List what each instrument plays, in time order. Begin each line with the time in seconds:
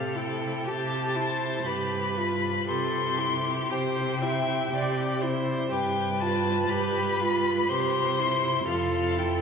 Already playing: cello C3, viola G4, violin A4 F5
0.15 viola E4, violin G5
0.65 cello C3, violin G4 A5, viola G4
1.15 viola E4, violin C5
1.65 cello G2, viola G4, violin B4 B5
2.17 viola F4
2.67 cello C3, viola G4, violin A4 C6
3.18 viola E4, violin G4
3.70 cello C3, viola G4, violin C5 G5
4.22 viola E4, violin E5
4.72 cello C3, viola G4, violin D5
5.21 viola E4, violin C5
5.70 cello G2, viola G4, violin B4 G5
6.20 viola F4, violin A5
6.68 cello G2, viola G4, violin B5
7.20 viola F4
7.68 cello C3, viola G4, violin C5 C6
8.19 viola E4
8.67 cello F2, viola F4, violin A4 F5
9.17 viola E4, violin G5